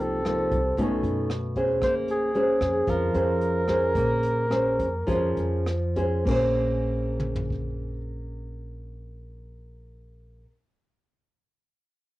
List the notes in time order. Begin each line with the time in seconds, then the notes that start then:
Already playing: C2 C3 F3 A#3 D#4
0.01 A4
0.25 F3 A#3 D#4, cross-stick, closed hi-hat
0.51 C2, kick, closed hi-hat
0.77 B1 B2 A3 C#4 D#4, kick, closed hi-hat
1.03 F#2, closed hi-hat
1.30 cross-stick, closed hi-hat
1.56 C#4 G#4 C5, kick, closed hi-hat
1.82 A#1 A#3 C5, kick, cross-stick, closed hi-hat
2.08 G#4, closed hi-hat
2.34 C#4 G#4 C5, closed hi-hat
2.61 F2, kick, cross-stick, closed hi-hat
2.87 F2 F3 A#4, kick, closed hi-hat
3.14 F2 C#4 G#4 C5, closed hi-hat
3.41 closed hi-hat
3.68 C#4 G#4 C5, kick, cross-stick, closed hi-hat
3.95 A#1 A#3, kick, closed hi-hat
4.23 closed hi-hat
4.50 C#4 G#4 C5, cross-stick, closed hi-hat
4.79 F2, kick, closed hi-hat
5.07 F2 F3 C#4 G#4 C5, kick, closed hi-hat
5.37 F2, closed hi-hat
5.66 cross-stick, closed hi-hat
5.96 C#4 G#4 C5, kick, closed hi-hat
6.25 A#1 A#3 C#4, kick, crash
6.29 G#4 C5
7.20 mid tom
7.36 floor tom
7.50 kick